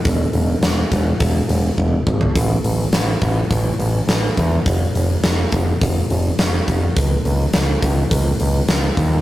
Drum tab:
HH |o-o-o-o-o-o-----|o-o-o-o-o-o-o-o-|o-o-o-o-o-o-o-o-|o-o-o-o-o-o-o-o-|
SD |----o-----------|----o-------o---|----o-------o---|----o-------o---|
FT |---------------o|----------------|----------------|----------------|
BD |o-----o-o---o-o-|o-----o-o-----o-|o-----o-o-----o-|o-----o-o-----o-|